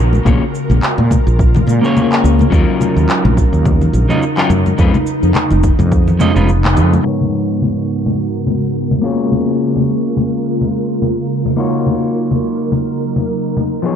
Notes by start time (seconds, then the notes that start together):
Already playing: A#1 C#3 G#3 F4 A#4
0.13 high conga, cabasa
0.25 A#1 A#3 C#4 F4 G#4 C#5, kick, low conga, cabasa
0.55 cabasa
0.70 A#1, low conga, cabasa
0.83 clap, cabasa
0.98 A#2, high conga
1.11 kick, low conga, cabasa
1.27 A#1, cabasa
1.39 kick, cabasa
1.55 low conga, cabasa
1.67 A#2, high conga, cabasa
1.81 A#3 C#4 F4 G#4, cabasa
1.86 C#5
1.97 low conga, cabasa
2.12 clap, cabasa
2.24 C#2, cabasa
2.39 high conga, low conga, cabasa
2.50 D#2 F#3 C#4 D#4 F4 A#4, kick, cabasa
2.81 low conga, cabasa
2.96 D#2, cabasa
3.09 clap, cabasa
3.25 A#1, high conga, low conga
3.37 kick, cabasa
3.53 D#2, cabasa
3.65 kick, low conga, cabasa
3.81 low conga, cabasa
3.93 A#1, high conga, cabasa
4.09 F#3 C#4 D#4 F4 D#5, low conga, cabasa
4.22 cabasa
4.37 F#3 C#4 D#4 F4 A#4, clap, cabasa
4.50 F#2, low conga, cabasa
4.66 high conga, cabasa
4.78 F2 C#3 F3 G#3 B3 C#4 D#4 F4 B4, kick, cabasa
4.94 low conga, cabasa
5.07 cabasa
5.23 F2, cabasa
5.35 clap, low conga, cabasa
5.51 F1, high conga, cabasa
5.63 kick, cabasa
5.79 F2, low conga, cabasa
5.92 kick, cabasa
6.08 low conga, cabasa
6.19 G#3 C#4 D#4 F4 D#5, high conga, low conga, cabasa
6.34 F1 G#3 C#4 D#4 F4 B4, cabasa
6.49 cabasa
6.65 clap, low conga, cabasa
6.77 F2, cabasa
6.93 high conga, cabasa
7.03 G#2 C#3 G#3 B3 F#4 A#4
7.07 C#5
7.21 low conga
7.62 low conga
8.06 low conga
8.47 low conga
8.91 low conga
9.02 A#3 C#4 F4 G#4 A#4 C#5
9.32 low conga
9.76 low conga
10.17 low conga
10.61 low conga
11.02 low conga
11.46 low conga
11.56 F#3 A#3 D#4 F4 F#4 A#4 C#5
11.86 low conga
12.31 low conga
12.72 low conga
13.16 low conga
13.57 low conga
13.82 F2 F3 B3 D#4 G#4 B4
13.86 C#5